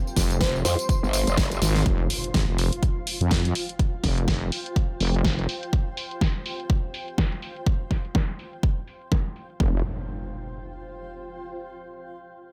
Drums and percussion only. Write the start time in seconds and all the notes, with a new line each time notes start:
0.07 tambourine
0.17 kick, snare, open hi-hat, tambourine
0.31 closed hi-hat, tambourine
0.41 kick, snare, closed hi-hat, tambourine
0.56 tambourine
0.65 open hi-hat, tambourine
0.79 closed hi-hat, tambourine
0.89 kick, closed hi-hat, tambourine
1.04 tambourine
1.13 open hi-hat, tambourine
1.27 closed hi-hat, tambourine
1.37 kick, snare, closed hi-hat, tambourine
1.52 closed hi-hat, tambourine
1.62 snare, open hi-hat, tambourine
1.76 snare, closed hi-hat, tambourine
1.86 kick, closed hi-hat
2.10 open hi-hat
2.24 closed hi-hat
2.34 kick, snare, closed hi-hat
2.58 open hi-hat
2.73 closed hi-hat
2.83 kick, closed hi-hat
3.07 open hi-hat
3.21 closed hi-hat
3.31 kick, snare, closed hi-hat
3.45 closed hi-hat
3.55 open hi-hat
3.69 closed hi-hat
3.79 kick, closed hi-hat
4.04 kick, snare, open hi-hat
4.18 closed hi-hat
4.28 kick, snare, closed hi-hat
4.52 open hi-hat
4.66 closed hi-hat
4.76 kick, closed hi-hat
5.00 open hi-hat
5.15 closed hi-hat
5.25 kick, snare, closed hi-hat
5.39 closed hi-hat
5.49 open hi-hat
5.63 closed hi-hat
5.73 kick, closed hi-hat
5.97 open hi-hat
6.11 closed hi-hat
6.21 kick, snare, closed hi-hat
6.46 open hi-hat
6.60 closed hi-hat
6.70 kick, closed hi-hat
6.94 open hi-hat
7.08 closed hi-hat
7.18 kick, snare, closed hi-hat
7.32 closed hi-hat
7.42 open hi-hat
7.56 closed hi-hat
7.67 kick, closed hi-hat
7.91 kick, snare, open hi-hat
8.05 closed hi-hat
8.15 kick, snare, closed hi-hat
8.39 open hi-hat
8.53 closed hi-hat
8.63 kick, closed hi-hat
8.88 open hi-hat
9.02 closed hi-hat
9.12 kick, snare
9.26 closed hi-hat
9.36 open hi-hat
9.50 closed hi-hat
9.60 kick